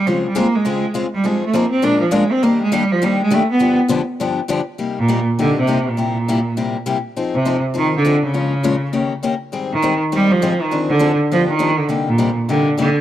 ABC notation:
X:1
M:4/4
L:1/8
Q:"Swing" 1/4=203
K:Cm
V:1 name="Steel-string acoustic guitar"
[_D,A,CFA] z [D,A,CFA] z [D,A,CFA] z [D,A,CFA] z | [F,CEA] z [F,CEA] z [B,,F,A,DFB] z [B,,F,A,DFB] z | [E,G,B,DG] z [E,G,B,DG] z [E,G,B,DG] z [E,G,B,DG] z | [G,,D,F,=B,DG] z [G,,D,F,B,DG] z [G,,D,F,B,DG] z [G,,D,F,B,DG] z |
[C,G,B,EG] z [C,G,B,EG] z [C,G,B,EG] z [C,G,B,EG] z | [C,G,B,=EG] z [C,G,B,EG] z [C,G,B,EG] z [C,G,B,EG] z | [F,CEA] z [F,CEA] z [F,CEA] z [F,CEA] z | [B,,F,A,_DFB] z [B,,F,A,DFB] z [E,B,DGB] z [E,B,DGB] z |
[A,,E,G,CEA] z [A,,E,G,CEA] z [A,,E,G,CEA] z [A,,E,G,CEA] z | [D,F,CDA] z [D,F,CDA] z [G,,D,F,=B,DG] z [G,,D,F,B,DG] z | [C,G,B,EG] z [C,G,B,EG] z [C,G,B,EG] z [C,G,B,EG] z |]
V:2 name="Cello" clef=bass
F, G, B, A,3 z G, | A, =A, B, C D F, _A, C | B, A, G, F, G, A, =A, =B,- | =B, z6 z |
z B,,2 z D, C,2 B,,- | B,,4- B,, z3 | z C,2 z E, D,2 _D,- | _D,4- D, z3 |
z E,2 z G, F,2 E, | z D,2 z F, E,2 D, | z B,,2 z D,2 D,2 |]